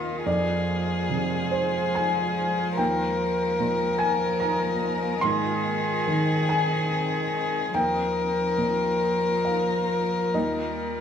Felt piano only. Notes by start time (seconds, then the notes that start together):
Already playing: D#2 A#2 A#4 D#5
0.26 F2 D5
1.10 C3
1.51 C5
1.95 G#5
2.77 D#2 G5
3.59 A#2
3.98 G#5
4.40 A#5
5.21 G#2 C6
6.07 D#3
6.49 G#5
7.74 D#2 G5
8.58 A#2
9.45 F5
10.34 D#2 D#5